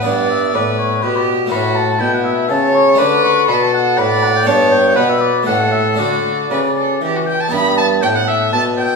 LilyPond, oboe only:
\new Staff \with { instrumentName = "Oboe" } { \time 3/4 \key d \major \tempo 4 = 121 fis''8 e''8 d''8 cis''8 b'16 d''16 r8 | b''8 a''8 g''16 fis''16 e''8 a''8 cis'''8 | d'''8 cis'''8 b''16 a''16 fis''8 b''8 fis''16 g''16 | a''8 g''8 fis''16 e''16 d''8 fis''8 e''8 |
d''2~ d''8 g''16 a''16 | b''8 a''8 g''16 fis''16 e''8 a''8 g''8 | }